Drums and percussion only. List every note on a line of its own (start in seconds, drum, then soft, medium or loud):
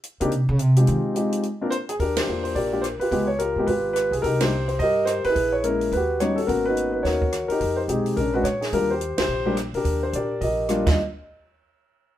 0.04 closed hi-hat soft
0.21 closed hi-hat soft
0.32 closed hi-hat soft
0.59 closed hi-hat medium
0.76 closed hi-hat soft
0.87 closed hi-hat soft
1.16 closed hi-hat soft
1.32 closed hi-hat soft
1.43 closed hi-hat soft
1.72 closed hi-hat medium
1.89 closed hi-hat soft
2.00 kick soft
2.00 open hi-hat soft
2.17 snare medium
2.17 ride medium
2.45 open hi-hat soft
2.56 kick soft
2.56 open hi-hat soft
2.84 cross-stick medium
2.84 closed hi-hat soft
3.01 open hi-hat soft
3.12 kick soft
3.12 open hi-hat soft
3.39 closed hi-hat soft
3.67 kick soft
3.67 open hi-hat soft
3.96 cross-stick medium
3.96 closed hi-hat medium
4.13 open hi-hat soft
4.24 kick soft
4.24 open hi-hat soft
4.41 snare medium
4.41 ride medium
4.69 open hi-hat soft
4.80 kick soft
4.80 open hi-hat soft
5.07 cross-stick medium
5.07 closed hi-hat soft
5.24 open hi-hat soft
5.36 kick soft
5.36 open hi-hat soft
5.64 closed hi-hat soft
5.81 open hi-hat soft
5.92 kick soft
5.92 open hi-hat soft
6.20 cross-stick medium
6.20 closed hi-hat soft
6.38 open hi-hat soft
6.49 kick soft
6.49 open hi-hat soft
6.77 closed hi-hat soft
7.05 kick soft
7.05 snare soft
7.05 open hi-hat soft
7.22 kick medium
7.33 cross-stick medium
7.33 closed hi-hat soft
7.50 open hi-hat soft
7.61 kick soft
7.61 open hi-hat soft
7.89 closed hi-hat soft
8.06 open hi-hat soft
8.17 kick soft
8.17 open hi-hat soft
8.45 cross-stick medium
8.45 closed hi-hat medium
8.62 snare soft
8.62 open hi-hat soft
8.73 kick soft
8.73 open hi-hat soft
9.01 closed hi-hat soft
9.18 snare medium
9.18 ride medium
9.57 cross-stick medium
9.57 closed hi-hat soft
9.74 open hi-hat soft
9.85 kick soft
9.85 open hi-hat soft
10.13 closed hi-hat soft
10.41 kick soft
10.41 open hi-hat soft
10.69 cross-stick medium
10.69 closed hi-hat soft
10.87 kick medium
10.87 snare medium
10.87 crash medium